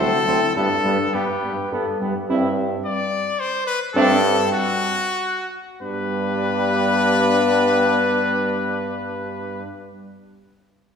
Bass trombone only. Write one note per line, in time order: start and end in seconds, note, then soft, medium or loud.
0.00 0.11 D2 medium
0.27 0.40 D2 medium
0.56 0.69 G2 medium
0.85 0.98 G2 medium
1.14 1.27 G2 medium
1.43 1.56 G2 medium
1.72 1.85 G2 medium
2.01 2.14 G2 medium
2.30 2.76 G2 loud
3.95 4.43 G2 loud
5.82 9.63 G2 loud